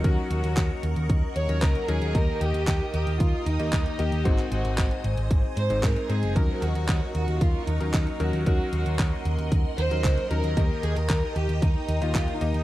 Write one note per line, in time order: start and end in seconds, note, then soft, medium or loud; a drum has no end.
0.00 4.21 A#4 medium
0.00 6.32 D#5 medium
0.00 2.11 F#5 medium
0.00 2.11 C#6 medium
0.04 0.16 D#2 loud
0.04 1.46 F#3 medium
0.04 1.46 C#4 medium
0.04 1.46 D#4 medium
0.04 0.29 F#4 medium
0.04 1.46 A#4 loud
0.04 kick loud
0.04 closed hi-hat medium
0.31 0.42 D#2 medium
0.31 0.80 F#4 medium
0.31 closed hi-hat medium
0.44 0.56 D#2 medium
0.44 closed hi-hat medium
0.57 0.69 D#2 loud
0.57 kick loud
0.57 clap loud
0.57 closed hi-hat medium
0.83 0.95 D#2 medium
0.83 closed hi-hat medium
0.96 1.08 D#2 medium
0.96 closed hi-hat medium
1.10 1.21 D#2 loud
1.10 kick loud
1.10 closed hi-hat medium
1.36 1.48 D#2 medium
1.36 1.60 C#5 loud
1.36 closed hi-hat medium
1.49 1.61 D#2 medium
1.49 1.85 F#3 medium
1.49 1.85 C#4 medium
1.49 1.85 D#4 medium
1.49 1.85 A#4 medium
1.49 closed hi-hat medium
1.62 1.74 C#2 loud
1.62 1.88 A#4 loud
1.62 kick loud
1.62 clap loud
1.62 closed hi-hat medium
1.75 closed hi-hat soft
1.88 2.00 D#2 medium
1.88 2.12 F#3 medium
1.88 2.12 C#4 medium
1.88 2.12 D#4 medium
1.88 2.15 G#4 loud
1.88 2.12 A#4 loud
1.88 closed hi-hat medium
2.02 2.13 D#2 medium
2.02 closed hi-hat medium
2.15 2.27 D#2 loud
2.15 3.56 D#3 medium
2.15 3.56 A#3 medium
2.15 3.56 D#4 medium
2.15 3.56 G4 medium
2.15 2.41 A#4 loud
2.15 3.56 D#5 loud
2.15 4.23 G5 medium
2.15 4.23 D#6 medium
2.15 kick loud
2.15 closed hi-hat medium
2.41 2.53 D#2 loud
2.41 2.93 G4 loud
2.41 closed hi-hat medium
2.54 2.66 D#2 medium
2.54 closed hi-hat medium
2.67 2.79 D#2 loud
2.67 kick loud
2.67 clap loud
2.67 closed hi-hat medium
2.94 3.06 D#2 medium
2.94 3.18 G4 medium
2.94 closed hi-hat medium
3.07 3.19 D#2 medium
3.07 closed hi-hat medium
3.20 3.32 D#2 loud
3.20 3.45 F4 medium
3.20 kick loud
3.20 closed hi-hat medium
3.46 3.58 D#2 loud
3.46 3.99 D#4 loud
3.46 closed hi-hat medium
3.60 3.71 D#2 medium
3.60 3.96 D#3 medium
3.60 3.96 A#3 medium
3.60 3.96 D#4 medium
3.60 3.96 G4 medium
3.60 3.96 D#5 medium
3.60 closed hi-hat medium
3.73 3.84 D#2 loud
3.73 kick loud
3.73 clap loud
3.73 closed hi-hat medium
3.86 closed hi-hat soft
3.99 4.11 D#2 medium
3.99 4.22 A#3 medium
3.99 4.22 D#4 medium
3.99 4.22 G4 medium
3.99 4.25 G4 medium
3.99 4.22 D#5 loud
3.99 closed hi-hat medium
4.12 4.24 D#2 medium
4.12 closed hi-hat medium
4.25 4.37 G#1 loud
4.25 5.67 G#2 medium
4.25 5.67 G#3 medium
4.25 5.67 C4 medium
4.25 5.67 D#4 medium
4.25 4.51 F#4 medium
4.25 6.34 C5 medium
4.25 5.67 C5 loud
4.25 6.34 G#5 medium
4.25 6.34 D#6 medium
4.25 kick loud
4.25 closed hi-hat medium
4.39 clap soft
4.39 closed hi-hat soft
4.52 4.63 G#1 loud
4.52 5.01 F#4 medium
4.52 closed hi-hat medium
4.65 4.77 G#1 medium
4.65 closed hi-hat medium
4.78 4.90 G#1 loud
4.78 kick loud
4.78 clap loud
4.78 closed hi-hat medium
4.91 closed hi-hat soft
5.04 5.16 G#1 loud
5.04 closed hi-hat medium
5.17 5.29 G#1 medium
5.17 closed hi-hat medium
5.31 5.42 G#1 loud
5.31 kick loud
5.31 closed hi-hat medium
5.57 5.69 G#2 medium
5.57 5.82 C5 loud
5.57 closed hi-hat medium
5.70 5.82 G#1 medium
5.70 6.06 G#2 medium
5.70 6.06 G#3 medium
5.70 6.06 C4 medium
5.70 6.06 D#4 medium
5.70 6.06 C5 medium
5.70 closed hi-hat medium
5.83 5.95 G#2 loud
5.83 6.10 A#4 loud
5.83 kick loud
5.83 clap loud
5.83 closed hi-hat medium
5.96 closed hi-hat soft
6.09 6.21 G#2 medium
6.09 6.33 G#3 medium
6.09 6.33 C4 medium
6.09 6.33 D#4 medium
6.09 6.36 G#4 loud
6.09 6.33 C5 loud
6.09 closed hi-hat medium
6.23 6.34 F#1 medium
6.23 closed hi-hat medium
6.36 6.48 D#2 loud
6.36 7.77 F#3 medium
6.36 7.77 C#4 medium
6.36 7.77 D#4 medium
6.36 12.63 A#4 medium
6.36 7.77 A#4 loud
6.36 6.62 A#4 loud
6.36 12.63 D#5 medium
6.36 10.53 F#5 medium
6.36 8.44 C#6 medium
6.36 kick loud
6.36 closed hi-hat medium
6.62 6.74 D#2 medium
6.62 7.14 F#4 loud
6.62 closed hi-hat medium
6.75 6.87 D#2 medium
6.75 closed hi-hat medium
6.88 7.00 D#2 loud
6.88 kick loud
6.88 clap loud
6.88 closed hi-hat medium
7.15 7.27 D#2 medium
7.15 7.39 F#4 medium
7.15 closed hi-hat medium
7.28 7.40 D#2 medium
7.28 closed hi-hat soft
7.41 7.53 D#2 loud
7.41 7.67 F4 loud
7.41 kick loud
7.41 closed hi-hat medium
7.67 7.79 D#2 loud
7.67 8.20 D#4 loud
7.67 closed hi-hat medium
7.80 7.92 D#2 medium
7.80 8.17 F#3 medium
7.80 8.17 C#4 medium
7.80 8.17 D#4 medium
7.80 8.17 A#4 medium
7.80 closed hi-hat soft
7.94 8.06 D#2 loud
7.94 kick loud
7.94 clap loud
7.94 closed hi-hat medium
8.07 closed hi-hat soft
8.20 8.32 D#2 medium
8.20 8.43 F#3 medium
8.20 8.43 C#4 medium
8.20 8.43 D#4 medium
8.20 8.45 F#4 medium
8.20 8.43 A#4 loud
8.20 closed hi-hat medium
8.33 8.45 D#2 medium
8.33 closed hi-hat medium
8.46 8.58 D#2 loud
8.46 9.88 F#3 medium
8.46 9.88 C#4 medium
8.46 9.88 D#4 medium
8.46 8.71 F#4 medium
8.46 9.88 A#4 loud
8.46 10.55 C6 medium
8.46 kick loud
8.46 closed hi-hat medium
8.73 8.84 D#2 loud
8.73 9.22 F#4 medium
8.73 closed hi-hat medium
8.86 8.98 D#2 medium
8.86 closed hi-hat medium
8.99 9.11 D#2 loud
8.99 kick loud
8.99 clap loud
8.99 closed hi-hat medium
9.25 9.37 D#2 loud
9.25 closed hi-hat medium
9.39 9.50 D#2 medium
9.39 closed hi-hat soft
9.52 9.63 D#2 loud
9.52 kick loud
9.52 closed hi-hat medium
9.78 9.90 D#2 loud
9.78 10.27 C5 loud
9.78 closed hi-hat medium
9.91 10.03 D#2 medium
9.91 10.28 F#3 medium
9.91 10.28 C#4 medium
9.91 10.28 D#4 medium
9.91 10.28 A#4 medium
9.91 closed hi-hat medium
10.04 10.16 C#2 loud
10.04 kick loud
10.04 clap loud
10.04 closed hi-hat medium
10.18 closed hi-hat soft
10.31 10.42 D#2 medium
10.31 10.54 F#3 medium
10.31 10.54 C#4 medium
10.31 10.54 D#4 medium
10.31 10.83 A#4 loud
10.31 10.54 A#4 loud
10.31 closed hi-hat medium
10.44 10.56 D#2 medium
10.44 closed hi-hat medium
10.57 10.69 D#2 loud
10.57 11.99 D#3 medium
10.57 11.99 A#3 medium
10.57 11.99 D#4 medium
10.57 11.98 G4 medium
10.57 11.99 D#5 loud
10.57 12.63 G5 medium
10.57 12.63 D#6 medium
10.57 kick loud
10.57 closed hi-hat medium
10.83 10.95 D#2 loud
10.83 10.96 G#4 loud
10.83 closed hi-hat medium
10.96 11.08 D#2 medium
10.96 11.36 A#4 loud
10.96 closed hi-hat medium
11.10 11.21 D#2 loud
11.10 kick loud
11.10 clap loud
11.10 closed hi-hat medium
11.36 11.48 D#2 loud
11.36 11.62 G4 medium
11.36 closed hi-hat medium
11.49 11.61 D#2 medium
11.49 closed hi-hat medium
11.62 11.74 D#2 loud
11.62 12.02 D#4 medium
11.62 kick loud
11.62 closed hi-hat medium
11.88 12.00 D#2 medium
11.88 closed hi-hat medium
12.02 12.13 D#2 medium
12.02 12.38 D#3 medium
12.02 12.38 A#3 medium
12.02 12.38 D#4 medium
12.02 12.41 F4 loud
12.02 12.38 G4 medium
12.02 12.38 D#5 medium
12.02 closed hi-hat soft
12.15 12.27 D#2 loud
12.15 kick loud
12.15 clap loud
12.15 closed hi-hat medium
12.28 closed hi-hat soft
12.41 12.53 D#2 medium
12.41 12.63 A#3 medium
12.41 12.63 D#4 medium
12.41 12.63 G4 medium
12.41 12.63 D#5 loud
12.41 closed hi-hat medium
12.54 12.63 D#2 medium
12.54 closed hi-hat medium